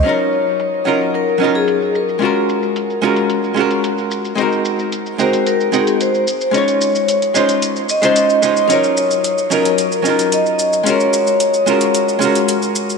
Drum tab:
HH |x---x--xx--xx---|x---x--xx--xx---|x---x--xx--xx---|xx--xx-xx--xx---|
SH |-xxxxxxxxxxxxxxx|xxxxxxxxxxxxxxxx|xxxxxxxxxxxxxxxx|xxxxxxxxxxxxxxxx|

HH |x---x--xx--xx---|x---x--xx--xx---|
SH |xxxxxxxxxxxxxxxx|xxxxxxxxxxxxxxxx|